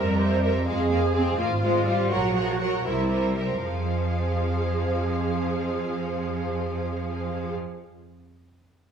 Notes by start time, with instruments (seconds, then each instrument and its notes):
Already playing: double bass section F2, cello section G3, viola section A#4, violin section A#4 C5 E5
0.18 violin section A#4 C5 E5, viola section C5
0.41 viola section A#4, violin section A#4 C5 E5
0.65 double bass section F2, cello section G#3, viola section G#4, violin section G#4 C5 F5
0.89 cello section A#3, violin section G#4 C5 F5
1.13 cello section C4, violin section G#4 C5 F5
1.37 double bass section G#1, cello section A#3, violin section F4 C5 F5, viola section F4
1.60 cello section G#3, violin section F4 C5 F5
1.85 cello section G3, violin section F4 C5 F5
2.09 double bass section A#1, cello section F#3, viola section F#4, violin section A#4 C#5 F#5
2.33 cello section F3, violin section A#4 C#5 F#5
2.59 cello section F#3, violin section A#4 C#5 F#5
2.84 double bass section C2, cello section G3, viola section E4, violin section A#4 C5 E5
3.10 violin section A#4 C5 E5
3.37 violin section A#4 C5 E5
3.63 double bass section F2, cello section F3, viola section G#4, violin section C5 F5